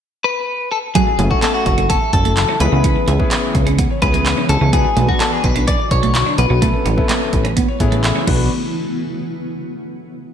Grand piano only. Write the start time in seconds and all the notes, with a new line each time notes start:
0.95 A3 C#4 E4 F#4
1.19 A3 C#4 E4 G#4
1.30 A3 C#4 E4 A4
2.60 B3 C#4 E4 G#4
3.19 B3 C#4 E4 G#4
4.02 B3 C#4 E4 G#4
4.73 B3 D4 F#4 B4
4.96 B3 D4 F#4 B4
5.08 B3 D4 F#4 B4
6.62 B3 C#4 E4 A4
6.97 B3 C#4 E4 A4
7.80 B3 C#4 E4 G#4
8.27 B3 D4 F#4 B4